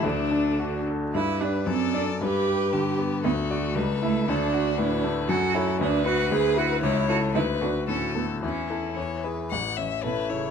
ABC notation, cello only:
X:1
M:2/4
L:1/8
Q:1/4=114
K:D
V:1 name="Cello"
D,3 z | [K:G] E D C D | G3 z | B, A, G, A, |
D3 z | [K:A] F E D F | G F E F | E D C B, |
C2 z2 | F, E, B,, C, |]